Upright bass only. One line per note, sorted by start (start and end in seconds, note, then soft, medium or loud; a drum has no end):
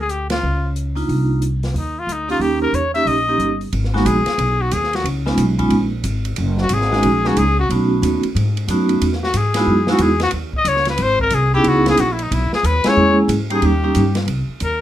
0.00 0.39 D2 medium
0.43 1.06 C#2 medium
1.09 1.72 C2 medium
1.74 2.05 D#2 medium
2.07 2.38 D2 medium
2.40 2.71 D#2 medium
2.73 3.04 E2 medium
3.05 3.37 A#1 medium
3.38 3.70 G1 medium
3.73 4.04 G#1 medium
4.05 4.25 A#1 medium
4.27 muted upright bass stroke soft
4.38 4.71 B1 medium
4.72 5.04 D#2 medium
5.04 5.37 C#2 medium
5.37 5.70 B1 medium
5.70 6.03 A#1 medium
6.04 6.36 G#1 medium
6.38 6.70 F#1 medium
6.71 7.03 G#1 medium
7.04 7.36 A#1 medium
7.37 7.69 C#2 loud
7.69 8.02 B1 medium
8.02 8.22 D#2 medium
8.24 muted upright bass stroke soft
8.35 8.67 G#2 medium
8.68 9.00 F#2 medium
9.01 9.33 E2 medium
9.34 9.66 G#2 medium
9.67 9.99 F#2 medium
9.99 10.32 E2 medium
10.33 10.64 D#2 medium
10.65 10.97 C#2 medium
10.99 11.31 G#1 medium
11.31 11.64 C2 medium
11.64 11.97 C#2 medium
11.98 12.30 A#1 medium
12.31 12.50 B1 medium
12.52 muted upright bass stroke soft
12.63 12.83 D#2 medium
12.85 muted upright bass stroke soft
12.96 13.28 E2 medium
13.28 13.61 G#2 medium
13.62 13.94 D#2 medium
13.96 14.26 G2 medium
14.27 14.47 C2 medium
14.49 muted upright bass stroke soft
14.61 14.81 D#2 medium